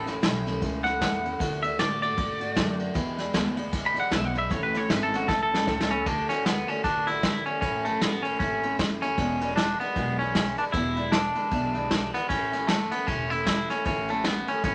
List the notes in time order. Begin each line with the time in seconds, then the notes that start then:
Already playing: A1
0.06 A3 C#4 E4, snare, ride
0.22 B1 A2 E3 A3 C#4 E4, snare, ride
0.45 A3 C#4 E4, snare, ride
0.61 C#2 E3 A3 C#4 E4, kick, ride
0.84 A3 C#4 E4 F#5, snare, ride
1.01 E2 A2 E3 A3 C#4 E4, kick, snare, ride
1.24 A3 C#4 E4, ride
1.39 D2 D3 A3 D4 F#4, kick, snare, ride
1.62 A3 D4 F#4 E5, ride
1.78 A2 D3 A3 D4 F#4 D5, snare, ride
2.00 A3 D4 F#4 D5, ride
2.17 G#2 D3 A3 D4 F#4, kick, ride
2.40 A3 D4 F#4, ride
2.55 F#2 D3 A3 D4 F#4, kick, snare, ride
2.77 A3 D4 F#4, ride
2.94 E2 B2 E3 G#3 D4 E4, kick, snare, ride
3.17 E3 G#3 D4 E4, snare, ride
3.33 D2 E2 B2 E3 G#3 D4 E4, snare, ride
3.56 E3 G#3 D4 E4, ride
3.72 C#2 E3 G#3 D4 E4, kick, ride
3.86 B5
3.94 E3 G#3 D4 E4, muted upright bass stroke, ride
4.00 F#5
4.10 B1 E2 B2 E3 G#3 D4 E4 E5, kick, snare, ride
4.25 F#5
4.34 E3 G#3 D4 E4, ride
4.38 E5
4.50 A1 A2 E3 A3 C#4 E4 C#5, kick, snare, ride
4.63 B4
4.73 A3 C#4 E4 C#5, snare, ride
4.88 G#1 A2 E3 A3 C#4 E4 B4, snare, ride
5.03 A4
5.12 A3 C#4 E4 F#4, snare, ride
5.27 A1 E3 A3 C#4 E4 A4, kick, snare
5.43 A4
5.51 A3 C#4 E4, snare
5.67 C#2 A2 E3 A3 C#4 E4, kick, snare
5.80 snare
5.91 A3 C#4 E4
6.06 D2 D3 A3 D4 F#4, kick, ride
6.29 A3 C#4 D4 F#4, snare, ride
6.45 D3 A3 B3 D4 F#4, snare, ride
6.67 A3 C#4 D4 F#4, ride
6.84 A1 D3 A3 D4 F#4, kick, snare, ride
7.07 A3 D4 E4 F#4, ride
7.23 D3 A3 D4 F#4, kick, snare, ride
7.46 A3 C#4 D4 F#4, ride
7.61 A1 A2 E3 A3 C#4 E4, kick, snare, ride
7.85 A3 C#4 E4, ride
8.01 A1 E3 A3 B3 C#4 E4, snare, ride
8.23 C#4 E4, ride
8.27 A3
8.39 G#1 A2 E3 A3 C#4 E4, kick, ride
8.63 A3 C#4 E4, ride
8.79 F#1 E3 A3 C#4 E4, kick, snare, ride
9.02 A3 C#4 E4, snare, ride
9.17 E1 E2 B2 E3 G#3 D4 E4, kick, snare, ride
9.41 E3 G#3 D4 E4, ride
9.56 E3 G#3 D4, snare, ride
9.80 E3 G#3 B3 D4 E4, ride
9.96 B1 E2 B2 E3 G#3 D4 E4, kick, ride
10.19 E3 G#3 C#4 D4 E4, ride
10.35 E3 G#3 D4 E4, kick, snare, ride
10.58 E3 G#3 D4 E4, ride
10.72 E1 E2 B2 E3 G#3 D4 E4, kick, snare, ride
10.96 E3 G#3 D4 E4, ride
11.12 E3 G#3 D4 E4, snare, ride
11.35 E3 G#3 D4 E4, ride
11.51 B1 E2 B2 E3 G#3 D4 E4, kick, ride
11.74 E3 G#3 D4 E4, ride
11.90 E3 G#3 D4 E4, kick, snare, ride
12.13 E3 G#3 B3 D4 E4, snare, ride
12.29 A1 A2 E3 A3 C#4 E4, kick, ride
12.52 A3 C#4 E4, snare, ride
12.67 E3 A3, snare, ride
12.91 A3 B3 C#4 E4, ride
13.07 E1 A2 E3 A3 C#4 E4, kick, ride
13.30 A3 C#4 E4, ride
13.47 E3 A3 C#4 E4, kick, snare, ride
13.70 A3 C#4 E4, snare, ride
13.85 A1 A2 E3 A3 C#4 E4, kick, ride
14.08 A3 C#4 E4, ride
14.13 A3
14.24 E3 A3 B3 C#4, snare, ride
14.48 A3 C#4 E4, ride
14.63 G#1 A2 E3 A3 C#4 E4, kick, snare, ride